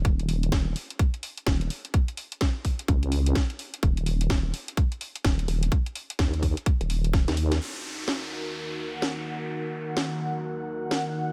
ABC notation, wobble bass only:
X:1
M:4/4
L:1/16
Q:"Swing 16ths" 1/4=127
K:Ebm
V:1 name="Wobble bass" clef=bass
E,,,4 E,,,2 z6 E,,,2 z2 | z8 D,,4 z4 | E,,,4 E,,,2 z6 E,,,2 E,,,2 | z4 E,,3 z2 E,,,4 E,,3 |
z16 | z16 |]